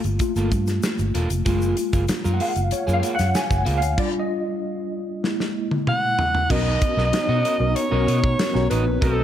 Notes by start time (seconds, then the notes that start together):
Already playing: A3 A#3 F4
0.04 G1, muted clean electric guitar stroke, closed hi-hat, shaker
0.19 A3 A#3 F4, muted clean electric guitar stroke, kick, closed hi-hat, shaker
0.36 G1 A#3 F4 A4, closed hi-hat, shaker
0.52 G2, muted clean electric guitar stroke, kick, closed hi-hat, shaker
0.67 muted clean electric guitar stroke, snare, closed hi-hat, shaker
0.83 snare, closed hi-hat, shaker
0.99 G1, muted clean electric guitar stroke, closed hi-hat, shaker
1.14 E1 A#3 F4 A4, closed hi-hat
1.30 F1, muted clean electric guitar stroke, closed hi-hat, shaker
1.45 F#1 G#3 A#3 F4 G#4, kick, closed hi-hat, shaker
1.62 shaker
1.77 muted clean electric guitar stroke, closed hi-hat, shaker
1.93 F#1 A#3 F4 G#4, kick, closed hi-hat, shaker
2.08 muted clean electric guitar stroke, snare, closed hi-hat, shaker
2.24 F#2 A#3 F4 A#4, shaker
2.34 F#5
2.40 A#3 F4 G#4 F5, open hi-hat
2.56 F#1, muted clean electric guitar stroke, closed hi-hat, shaker
2.71 C#5, muted clean electric guitar stroke, muted fingered electric bass stroke, closed hi-hat, shaker
2.87 F#2 A#3 F4 G#4, shaker
2.93 F5
3.03 A#3 F4 G#4, closed hi-hat, shaker
3.15 F#5, muted clean electric guitar stroke
3.19 F#2, snare, closed hi-hat, shaker
3.35 G#5, muted clean electric guitar stroke, snare, closed hi-hat, shaker
3.50 F#1, muted clean electric guitar stroke, kick, snare, shaker
3.65 C#2 A#3 F4 G#4, closed hi-hat
3.78 F5, muted clean electric guitar stroke
3.82 D2, closed hi-hat, shaker
3.97 G3 D4 F4 D5, kick, crash
4.19 D#5
5.23 G#3 A#3 E4, snare
5.40 snare
5.71 high tom
5.87 F#5, mid tom
6.19 floor tom
6.35 floor tom
6.50 B1 B3 C#4 D#4 F#4 A#4 D#5, kick, crash
6.81 muted clean electric guitar stroke, kick, closed hi-hat
6.97 B1 F#4 A#4 D#5, snare
7.12 B3 C#4 D#4 F#4 C#5, muted clean electric guitar stroke, snare, closed hi-hat
7.29 B2 F#4 A#4 F#5
7.44 F#4 A#4 D#5, closed hi-hat
7.59 B1 B3 C#4 D#4 F#4 A#4, muted clean electric guitar stroke
7.76 C#5, muted clean electric guitar stroke, closed hi-hat
7.91 B1 B3 C#4 D#4 F#4 A#4 D#5
8.07 B2 F#4 A#4 D#5, closed hi-hat
8.24 kick
8.39 snare, closed hi-hat
8.54 B1 B3 C#4 D#4 F#4 C#5, muted clean electric guitar stroke, snare
8.70 A1 F#4 A#4 B4 D#5, closed hi-hat
8.86 A#1, muted clean electric guitar stroke
9.01 B1 A3 C4 D#4 F#4 A4 A#4 C5 D#5, kick, closed hi-hat
9.08 B4